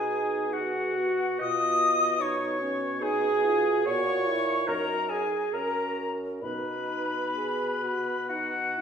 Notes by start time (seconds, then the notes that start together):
Already playing: B2 D#4 G#4 G#5
0.52 F#4 G#4 F#5
0.97 F#4
1.39 B2 F4 D#5 D#6
2.21 D#4 C#5 C#6
2.61 C#4
3.01 D#4 G#4 G#5
3.44 F4
3.86 A#2 F#4 C#5 C#6
4.27 E4
4.67 F#2 D#4 A#4 A#5
5.09 G#4 G#5
5.53 F#2 C#4 A#4 A#5
6.42 B2 D#4 B4 B5
7.36 G#4
7.84 F#4
8.28 D#4 F#4 F#5
8.77 E4